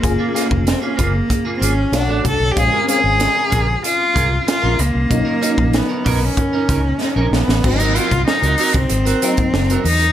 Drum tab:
CC |----------------|----------------|----------------|x---------------|
HH |x-x-x-x-x-x-x-x-|x-x-x-x-x-x-x-x-|x-x-x-o-x-x-----|-xxx-xoxxxxx-xox|
SD |--o-o-------o---|----o-------o---|----o-------o-oo|----o-------o---|
BD |o--o--o-o-----o-|o-----o---o-----|o--o--o-o-o-----|o--o---o---o----|